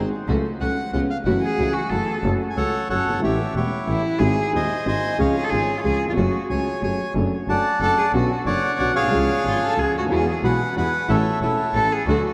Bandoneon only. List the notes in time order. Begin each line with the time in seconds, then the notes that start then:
0.61 F#5
0.93 F#5
1.10 F5
1.25 F#5
2.50 G#5
2.57 A4 C#5 F#5
2.90 A4 C#5 F#5
3.24 G4 C#5 E5
3.56 E4 G4 C#5
4.55 C5 D#5 G#5
4.88 C5 D#5 G#5
5.20 G#4 C#5 F5
5.52 F4 G#4 C#5
6.50 C#5 G#5
6.83 C#5 G#5
7.49 D5 F#5 A5
7.82 D5 F#5 A5
8.46 C#5 D5 F#5
8.80 F#5
8.95 G#4 C#5 F5
10.44 B4 F#5
10.77 B4 F#5
11.10 A4 C#5 E5
11.41 E4 A4 C#5